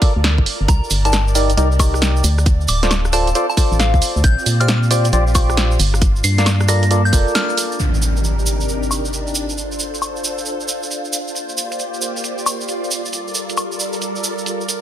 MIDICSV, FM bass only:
0, 0, Header, 1, 2, 480
1, 0, Start_track
1, 0, Tempo, 444444
1, 740, Time_signature, 4, 2, 24, 8
1, 15997, End_track
2, 0, Start_track
2, 0, Title_t, "FM bass"
2, 0, Program_c, 0, 39
2, 176, Note_on_c, 0, 38, 94
2, 414, Note_on_c, 0, 31, 93
2, 430, Note_off_c, 0, 38, 0
2, 487, Note_off_c, 0, 31, 0
2, 656, Note_on_c, 0, 31, 85
2, 728, Note_off_c, 0, 31, 0
2, 739, Note_on_c, 0, 36, 98
2, 872, Note_off_c, 0, 36, 0
2, 980, Note_on_c, 0, 31, 82
2, 1680, Note_off_c, 0, 31, 0
2, 1699, Note_on_c, 0, 36, 84
2, 2400, Note_off_c, 0, 36, 0
2, 2419, Note_on_c, 0, 38, 95
2, 2879, Note_off_c, 0, 38, 0
2, 2899, Note_on_c, 0, 26, 82
2, 3600, Note_off_c, 0, 26, 0
2, 4014, Note_on_c, 0, 33, 96
2, 4253, Note_on_c, 0, 38, 100
2, 4269, Note_off_c, 0, 33, 0
2, 4327, Note_off_c, 0, 38, 0
2, 4494, Note_on_c, 0, 38, 84
2, 4567, Note_off_c, 0, 38, 0
2, 4578, Note_on_c, 0, 34, 96
2, 4711, Note_off_c, 0, 34, 0
2, 4818, Note_on_c, 0, 46, 84
2, 5519, Note_off_c, 0, 46, 0
2, 5539, Note_on_c, 0, 34, 86
2, 6240, Note_off_c, 0, 34, 0
2, 6259, Note_on_c, 0, 31, 96
2, 6720, Note_off_c, 0, 31, 0
2, 6739, Note_on_c, 0, 43, 83
2, 7698, Note_on_c, 0, 29, 91
2, 7714, Note_off_c, 0, 43, 0
2, 7832, Note_off_c, 0, 29, 0
2, 15997, End_track
0, 0, End_of_file